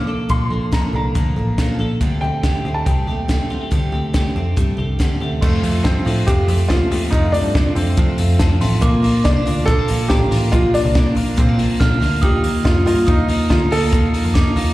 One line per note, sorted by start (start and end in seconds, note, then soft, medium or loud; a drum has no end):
0.00 0.29 A#2 medium
0.00 1.15 F3 medium
0.00 0.50 A#3 soft
0.00 0.94 D4 soft
0.00 0.31 D6 medium
0.07 0.28 A#3 soft
0.07 0.29 D4 soft
0.07 0.29 A4 soft
0.29 0.48 A#1 medium
0.29 0.51 A#2 medium
0.29 0.51 F3 medium
0.29 0.51 A#3 medium
0.29 0.51 D4 medium
0.29 0.49 A4 medium
0.29 0.70 C6 medium
0.29 kick medium
0.29 closed hi-hat medium
0.50 0.87 A#1 medium
0.50 0.72 A#3 soft
0.50 0.72 D4 soft
0.50 0.72 A4 soft
0.72 0.94 A#2 medium
0.72 0.94 F3 medium
0.72 0.94 A#3 medium
0.72 0.93 D4 medium
0.72 0.92 A4 medium
0.72 0.94 A#5 medium
0.72 kick loud
0.72 snare medium
0.72 closed hi-hat medium
0.93 1.12 C2 medium
0.93 1.15 A#3 soft
0.93 1.15 D4 soft
0.93 1.15 A4 soft
0.93 1.76 A#5 medium
1.14 1.34 D2 medium
1.14 1.36 F3 medium
1.14 1.37 A#3 medium
1.14 1.36 D4 medium
1.14 1.35 A4 medium
1.14 kick loud
1.14 closed hi-hat medium
1.36 1.55 A1 medium
1.36 1.58 A#3 soft
1.36 1.58 D4 soft
1.36 1.58 A4 soft
1.58 1.76 A#1 medium
1.58 1.79 A#2 medium
1.58 1.80 F3 medium
1.58 1.80 A#3 medium
1.58 1.79 D4 medium
1.58 1.78 A4 medium
1.58 kick medium
1.58 snare loud
1.58 closed hi-hat medium
1.79 1.98 A#1 medium
1.79 2.01 A#3 soft
1.79 2.01 D4 soft
1.79 2.01 A4 medium
2.01 2.19 D2 medium
2.01 2.22 D3 medium
2.01 2.22 G3 medium
2.01 2.23 A3 medium
2.01 2.22 C4 medium
2.01 2.21 G4 medium
2.01 kick medium
2.01 closed hi-hat medium
2.21 2.58 D2 medium
2.21 2.44 A3 soft
2.21 2.44 C4 soft
2.21 2.43 G4 soft
2.21 2.71 G5 medium
2.43 2.65 D3 medium
2.43 2.65 G3 medium
2.43 2.66 A3 medium
2.43 2.65 C4 medium
2.43 2.64 G4 medium
2.43 kick loud
2.43 snare loud
2.43 closed hi-hat medium
2.65 2.83 D2 medium
2.65 2.85 A3 soft
2.65 2.87 C4 soft
2.65 2.86 G4 medium
2.74 2.86 A5 medium
2.86 3.05 C2 medium
2.86 3.08 G3 medium
2.86 3.08 A3 medium
2.86 3.08 C4 medium
2.86 3.06 G4 medium
2.86 4.96 G5 medium
2.86 kick medium
2.86 closed hi-hat medium
3.07 3.44 D#2 medium
3.07 3.28 A3 soft
3.07 3.29 C4 soft
3.07 3.29 G4 soft
3.28 3.50 D3 medium
3.28 3.50 G3 medium
3.28 3.51 A3 medium
3.28 3.50 C4 medium
3.28 3.49 G4 medium
3.28 kick medium
3.28 snare loud
3.28 closed hi-hat medium
3.50 3.71 A3 soft
3.50 3.71 C4 medium
3.50 3.61 F4 medium
3.50 3.72 G4 medium
3.61 4.13 G4 soft
3.71 3.90 D2 medium
3.71 3.93 D3 medium
3.71 3.93 G3 medium
3.71 3.93 A3 medium
3.71 3.93 C4 medium
3.71 3.91 G4 medium
3.71 kick medium
3.71 closed hi-hat soft
3.92 4.29 D2 medium
3.92 4.14 A3 soft
3.92 4.14 C4 soft
3.92 4.14 G4 medium
4.13 4.35 D3 medium
4.13 4.36 G3 medium
4.13 4.36 A3 medium
4.13 4.36 C4 medium
4.13 4.35 G4 medium
4.13 kick loud
4.13 snare loud
4.13 closed hi-hat medium
4.36 4.54 F2 medium
4.36 4.56 A3 soft
4.36 4.57 C4 medium
4.36 4.57 G4 medium
4.56 4.75 G2 medium
4.56 4.78 G3 medium
4.56 4.79 A3 medium
4.56 4.78 C4 medium
4.56 4.76 G4 medium
4.56 kick loud
4.56 closed hi-hat medium
4.77 4.96 C2 medium
4.77 4.99 A3 soft
4.77 4.99 C4 soft
4.77 4.99 G4 medium
4.99 5.18 D2 medium
4.99 5.21 D3 medium
4.99 5.21 G3 medium
4.99 5.21 A3 medium
4.99 5.20 C4 medium
4.99 5.19 G4 medium
4.99 kick medium
4.99 snare loud
4.99 closed hi-hat medium
5.20 5.39 D2 medium
5.20 5.42 A3 soft
5.20 5.43 C4 soft
5.20 5.42 G4 soft
5.41 5.64 F2 medium
5.41 5.60 F2 medium
5.41 5.64 C3 medium
5.41 5.64 F3 medium
5.41 5.86 A3 medium
5.41 5.64 A3 medium
5.41 5.63 C4 medium
5.41 5.62 F4 medium
5.41 5.81 C6 medium
5.41 kick medium
5.41 crash medium
5.63 5.82 F2 medium
5.63 5.83 F3 soft
5.63 5.84 A3 soft
5.63 5.85 C4 soft
5.63 5.85 F4 soft
5.63 open hi-hat medium
5.84 6.03 G2 medium
5.84 6.06 F3 medium
5.84 6.06 A3 medium
5.84 6.28 C4 medium
5.84 6.05 C4 medium
5.84 6.04 F4 medium
5.84 8.38 A5 medium
5.84 kick loud
5.84 snare loud
5.84 closed hi-hat medium
6.05 6.24 A2 medium
6.05 6.27 F3 soft
6.05 6.28 A3 soft
6.05 6.27 C4 soft
6.05 6.27 F4 medium
6.05 open hi-hat medium
6.27 6.49 F2 medium
6.27 6.46 F2 loud
6.27 6.49 C3 medium
6.27 6.49 F3 medium
6.27 6.49 A3 medium
6.27 6.48 C4 medium
6.27 6.47 F4 medium
6.27 6.71 G4 medium
6.27 kick loud
6.27 closed hi-hat medium
6.48 6.67 F2 medium
6.48 6.68 F3 soft
6.48 6.69 A3 soft
6.48 6.70 C4 soft
6.48 6.70 F4 soft
6.48 open hi-hat medium
6.68 6.88 D#2 loud
6.68 6.91 F3 medium
6.68 6.92 A3 medium
6.68 6.91 C4 medium
6.68 7.13 F4 medium
6.68 kick loud
6.68 snare loud
6.68 closed hi-hat medium
6.73 6.90 F4 medium
6.91 7.09 D#2 medium
6.91 7.12 F3 soft
6.91 7.13 A3 medium
6.91 7.13 C4 medium
6.91 7.13 F4 soft
6.91 open hi-hat medium
7.11 7.34 F2 medium
7.11 7.40 F2 medium
7.11 7.34 C3 medium
7.11 7.34 F3 medium
7.11 7.34 A3 medium
7.11 7.33 C4 medium
7.11 7.31 D#4 medium
7.11 kick medium
7.11 closed hi-hat medium
7.15 7.32 F4 medium
7.32 7.53 F3 soft
7.32 7.54 A3 soft
7.32 7.55 C4 soft
7.32 7.77 D4 loud
7.32 7.55 F4 soft
7.32 open hi-hat medium
7.44 7.62 G2 medium
7.54 7.76 F3 medium
7.54 7.76 A3 medium
7.54 7.76 C4 medium
7.54 7.74 F4 medium
7.54 kick loud
7.54 snare loud
7.54 closed hi-hat medium
7.75 7.94 F2 loud
7.75 7.96 F3 soft
7.75 7.97 A3 soft
7.75 8.36 C4 medium
7.75 7.97 C4 medium
7.75 7.97 F4 medium
7.75 open hi-hat medium
7.97 8.19 F2 medium
7.97 8.19 C3 medium
7.97 8.16 F3 loud
7.97 8.19 F3 medium
7.97 8.19 A3 medium
7.97 8.18 C4 medium
7.97 8.17 F4 medium
7.97 kick loud
7.97 closed hi-hat medium
8.18 8.37 F2 medium
8.18 8.38 F3 soft
8.18 8.40 A3 soft
8.18 8.40 C4 medium
8.18 8.40 F4 medium
8.18 open hi-hat medium
8.39 8.58 F2 medium
8.39 8.61 F3 medium
8.39 8.61 A3 medium
8.39 8.60 C4 medium
8.39 8.59 F4 medium
8.39 8.62 A5 medium
8.39 kick loud
8.39 snare loud
8.39 closed hi-hat medium
8.60 8.80 A1 medium
8.60 8.81 F3 medium
8.60 8.83 A3 medium
8.60 8.83 C4 medium
8.60 8.82 F4 medium
8.60 8.83 C6 medium
8.60 open hi-hat medium
8.81 9.01 A#1 medium
8.81 9.04 A#2 medium
8.81 9.04 F3 medium
8.81 9.22 A#3 medium
8.81 9.04 A#3 medium
8.81 9.03 D4 medium
8.81 9.01 F4 medium
8.81 10.14 D6 medium
8.81 kick medium
8.81 closed hi-hat medium
9.02 9.22 A#1 medium
9.02 9.25 A#3 soft
9.02 9.25 D4 soft
9.02 9.25 F4 soft
9.02 open hi-hat medium
9.24 9.43 C2 loud
9.24 9.46 F3 medium
9.24 9.47 A#3 medium
9.24 9.37 C4 medium
9.24 9.64 D4 medium
9.24 9.46 D4 medium
9.24 9.44 F4 medium
9.24 kick loud
9.24 snare loud
9.24 closed hi-hat medium
9.37 9.68 D4 medium
9.46 9.65 D2 medium
9.46 9.68 A#3 soft
9.46 9.68 D4 medium
9.46 9.67 F4 medium
9.46 open hi-hat medium
9.66 9.86 A#1 medium
9.66 9.89 A#2 medium
9.66 9.89 F3 medium
9.66 9.90 A#3 medium
9.66 9.79 C4 medium
9.66 9.89 D4 medium
9.66 10.11 A4 loud
9.66 kick loud
9.66 closed hi-hat medium
9.70 9.88 F4 medium
9.79 10.09 D4 medium
9.88 10.07 A#1 medium
9.88 10.10 A#3 soft
9.88 10.11 D4 soft
9.88 10.10 F4 medium
9.88 open hi-hat medium
10.08 10.28 A1 medium
10.08 10.31 F3 medium
10.08 10.32 A#3 medium
10.08 10.31 D4 medium
10.08 10.53 G4 medium
10.08 11.86 A#5 medium
10.08 kick loud
10.08 snare loud
10.08 closed hi-hat medium
10.13 10.30 F4 medium
10.31 10.49 A1 medium
10.31 10.52 A#3 soft
10.31 10.53 D4 medium
10.31 10.53 F4 medium
10.31 open hi-hat medium
10.52 10.80 A#1 loud
10.52 10.74 A#2 medium
10.52 10.74 F3 medium
10.52 10.74 A#3 medium
10.52 10.74 D4 medium
10.52 10.72 F4 medium
10.52 kick loud
10.52 closed hi-hat medium
10.74 10.95 A#3 soft
10.74 11.40 D4 loud
10.74 10.95 D4 soft
10.74 10.95 F4 medium
10.74 open hi-hat medium
10.85 11.03 C2 loud
10.94 11.16 F3 medium
10.94 11.17 A#3 medium
10.94 11.15 D4 medium
10.94 11.14 F4 medium
10.94 kick loud
10.94 snare loud
10.94 closed hi-hat medium
11.15 11.34 A#1 medium
11.15 11.37 A#3 soft
11.15 11.38 D4 soft
11.15 11.37 F4 medium
11.15 open hi-hat medium
11.37 11.59 A#2 medium
11.37 11.56 A#2 loud
11.37 11.59 F3 medium
11.37 11.59 A#3 medium
11.37 11.78 C4 medium
11.37 11.49 C4 medium
11.37 11.58 D4 medium
11.37 11.56 F4 medium
11.37 kick loud
11.37 closed hi-hat medium
11.49 11.80 D4 medium
11.58 11.77 A#1 medium
11.58 11.78 A#3 soft
11.58 11.80 D4 medium
11.58 11.80 F4 medium
11.58 open hi-hat medium
11.79 11.99 A#1 loud
11.79 12.01 F3 medium
11.79 12.01 A#3 medium
11.79 12.00 D4 medium
11.79 11.98 F4 medium
11.79 12.24 F6 loud
11.79 kick loud
11.79 snare loud
11.79 closed hi-hat medium
12.00 12.19 D2 medium
12.00 12.21 A#3 medium
12.00 12.23 D4 medium
12.00 12.22 F4 medium
12.00 open hi-hat medium
12.22 12.41 D#2 medium
12.22 12.44 D#3 medium
12.22 12.44 A#3 medium
12.22 12.44 D#4 medium
12.22 12.42 F4 medium
12.22 12.62 G4 medium
12.22 13.05 D#6 loud
12.22 kick medium
12.22 closed hi-hat medium
12.44 12.62 D#2 medium
12.44 12.65 A#3 soft
12.44 12.65 D#4 soft
12.44 12.65 F4 medium
12.44 open hi-hat medium
12.64 12.83 F2 medium
12.64 12.86 D#3 medium
12.64 12.87 A#3 medium
12.64 12.86 D#4 medium
12.64 12.85 F4 medium
12.64 12.84 F4 medium
12.64 kick loud
12.64 snare loud
12.64 closed hi-hat medium
12.86 13.05 G2 medium
12.86 13.06 A#3 medium
12.86 13.07 D#4 medium
12.86 13.07 F4 medium
12.86 13.06 F4 medium
12.86 open hi-hat medium
13.07 13.26 D#2 loud
13.07 13.28 D#3 medium
13.07 13.29 A#3 medium
13.07 13.29 D#4 medium
13.07 13.52 D#4 medium
13.07 13.27 F4 medium
13.07 13.51 D#6 loud
13.07 kick loud
13.07 closed hi-hat medium
13.28 13.47 D#2 medium
13.28 13.49 A#3 soft
13.28 13.50 D#4 soft
13.28 13.50 F4 medium
13.28 open hi-hat medium
13.49 13.68 D2 medium
13.49 13.71 D#3 medium
13.49 13.72 A#3 medium
13.49 13.71 D#4 medium
13.49 13.55 F4 medium
13.49 13.69 F4 medium
13.49 14.37 A#5 medium
13.49 kick loud
13.49 snare loud
13.49 closed hi-hat medium
13.71 13.90 D2 medium
13.71 13.92 A#3 soft
13.71 13.93 D#4 soft
13.71 13.92 F4 medium
13.71 14.31 A4 loud
13.71 open hi-hat medium
13.92 14.20 D#2 loud
13.92 14.14 D#3 medium
13.92 14.14 A#3 medium
13.92 14.15 D#4 medium
13.92 14.13 F4 medium
13.92 kick medium
13.92 closed hi-hat medium
14.14 14.35 A#3 soft
14.14 14.35 D#4 soft
14.14 14.35 F4 medium
14.14 open hi-hat medium
14.25 14.43 F2 medium
14.34 14.56 D#3 medium
14.34 14.57 A#3 medium
14.34 14.56 D#4 medium
14.34 14.55 F4 medium
14.34 14.74 D6 medium
14.34 kick loud
14.34 snare loud
14.34 closed hi-hat medium
14.56 14.74 D#2 loud
14.56 14.74 A#3 medium
14.56 14.74 D#4 medium
14.56 14.74 F4 medium
14.56 open hi-hat medium